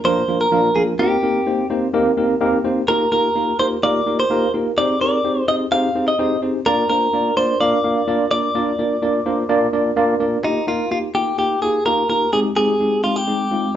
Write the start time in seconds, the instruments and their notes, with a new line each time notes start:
0.04 tine electric piano F3 A#3 D4 F4 A#4, clean electric guitar C5
0.28 tine electric piano F3 A#3 D4 F4 A#4
0.41 clean electric guitar A#4
0.52 tine electric piano F3 A#3 D4 F4 A#4
0.76 tine electric piano F3 A#3 D4 F4 A#4, clean electric guitar G#4
0.99 tine electric piano A#3 C4 D#4 G4 A#4, clean electric guitar G4
1.23 tine electric piano A#3 C4 D#4 G4 A#4
1.46 tine electric piano A#3 C4 D#4 G4 C5
1.70 tine electric piano A#3 C4 D#4 G4 C5
1.94 tine electric piano A#3 C4 D#4 G4 A#4
2.17 tine electric piano A#3 C4 D#4 G4 A#4
2.41 tine electric piano A#3 C4 D#4 G4 A#4
2.64 tine electric piano A#3 C4 D#4 G4 C5
2.88 tine electric piano A#3 D#4 F4 G4 A#4, clean electric guitar A#4
3.12 tine electric piano A#3 D#4 F4 G4 A#4, clean electric guitar A#4
3.35 tine electric piano A#3 D#4 F4 G4 A#4
3.59 tine electric piano A#3 D#4 F4 G4 A#4, clean electric guitar C5
3.83 tine electric piano A#3 D#4 F4 G4 A#4, clean electric guitar D5
4.06 tine electric piano A#3 D#4 F4 G4 A#4
4.20 clean electric guitar C5
4.30 tine electric piano A#3 D#4 F4 G4 A#4
4.54 tine electric piano A#3 D#4 F4 G4 A#4
4.77 tine electric piano C4 D#4 G4 G#4 C5, clean electric guitar D5
5.01 tine electric piano C4 D#4 G4 G#4 A#4, clean electric guitar D5
5.24 tine electric piano C4 D#4 G4 G#4 C5
5.48 tine electric piano C4 D#4 G4 G#4 C5, clean electric guitar D#5
5.71 tine electric piano C4 D#4 G4 G#4 C5, clean electric guitar F5
5.95 tine electric piano C4 D#4 G4 G#4 C5
6.08 clean electric guitar D#5
6.19 tine electric piano C4 D#4 G4 G#4 C5
6.42 tine electric piano C4 D#4 G4 G#4 C5
6.66 tine electric piano A#3 D4 F4 A#4 D5, clean electric guitar A#4
6.90 tine electric piano A#3 D4 F4 A#4 C5, clean electric guitar A#4
7.13 tine electric piano A#3 D4 F4 A#4 D5
7.37 tine electric piano A#3 D4 F4 A#4 D5, clean electric guitar C5
7.60 tine electric piano A#3 D4 F4 A#4 F5, clean electric guitar D5
7.84 tine electric piano A#3 D4 F4 A#4 F5
8.07 tine electric piano A#3 D4 F4 A#4 D5
8.31 tine electric piano A#3 D4 F4 A#4 D5, clean electric guitar D5
8.55 tine electric piano A#3 D4 F4 A#4 D5
8.79 tine electric piano A#3 D4 F4 A#4 D5
9.02 tine electric piano A#3 D4 F4 A#4 D5
9.26 tine electric piano A#3 D4 F4 A#4 C5
9.49 tine electric piano A#3 D4 F4 A#4 D5
9.73 tine electric piano A#3 D4 F4 A#4 D5
9.96 tine electric piano A#3 D4 F4 A#4 D5
10.20 tine electric piano A#3 D4 F4 A#4 D5
10.44 tine electric piano A#3 D#4 F4 G4, clean electric guitar D#4
10.67 tine electric piano A#3 D#4 F4 A#4, clean electric guitar F4
10.91 tine electric piano A#3 D#4 F4 G4, clean electric guitar F4
11.15 tine electric piano A#3 D#4 F4 G4, clean electric guitar G4
11.38 tine electric piano A#3 D#4 F4 G4, clean electric guitar G4
11.62 tine electric piano A#3 D#4 F4 G4, clean electric guitar G#4
11.85 tine electric piano A#3 D#4 F4 G4, clean electric guitar A#4
12.09 tine electric piano A#3 D#4 F4 G4, clean electric guitar A#4
12.33 tine electric piano G#3 C4 D#4 G4, clean electric guitar G#4
12.56 tine electric piano G#3 C4 D#4 G4, clean electric guitar G#4
12.80 tine electric piano G#3 C4 D#4 G4
13.04 tine electric piano G#3 C4 D#4 G4, clean electric guitar F4
13.16 clean electric guitar G4
13.27 tine electric piano G#3 C4 D#4 G#4
13.51 tine electric piano G#3 C4 D#4 F4